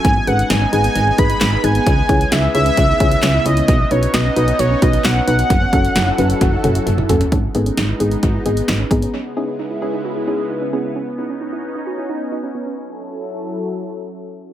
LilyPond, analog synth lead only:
\new Staff \with { instrumentName = "Analog synth lead" } { \time 4/4 \key fis \dorian \tempo 4 = 132 gis''8 fis''8 gis''8 gis''4 b''4 gis''8~ | gis''4 e''8 e''2 dis''8~ | dis''8 cis''8 dis''4 cis''8 dis''8 fis''8 fis''8~ | fis''2. r4 |
r1 | r1 | r1 | r1 | }